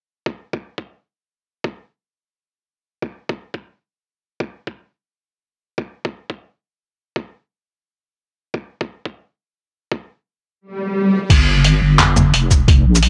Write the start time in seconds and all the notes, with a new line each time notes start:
0.26 kick
0.53 kick
0.78 kick
1.64 kick
3.02 kick
3.29 kick
3.54 kick
4.40 kick
4.67 kick
5.78 kick
6.05 kick
6.30 kick
7.16 kick
8.54 kick
8.81 kick
9.06 kick
9.92 kick
10.61 swell
11.30 G1, kick, closed hi-hat, crash
11.64 closed hi-hat
11.81 G1
11.99 clap, closed hi-hat, mid tom
12.16 mid tom, shaker
12.33 F1, closed hi-hat
12.51 kick, shaker
12.68 kick, closed hi-hat
12.85 A#1
12.95 shaker
13.03 closed hi-hat